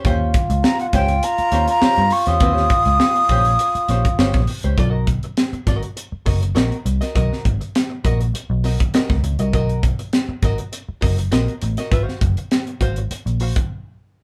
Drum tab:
HH |x-xx-xxxxxxx-xox|x-xx-xxxxxxx-xox|x-xxxxxxx-oxxxxx|x-xxx-xxx-oxx-xx|
SD |----o-o---o-o--o|-o--o-----o-oo--|----o-o---o-o--o|-o--o-----o-oo--|
BD |o-o---o---------|o-o---o----o-o--|o-o---o---o-----|o-o---o----o-o--|

HH |xxxxx-xxx-oxxxxx|x-xxxxxxxxox----|
SD |----o-o---o-o--o|-o--o-----------|
BD |o-o---o---o-----|o-o---o----o----|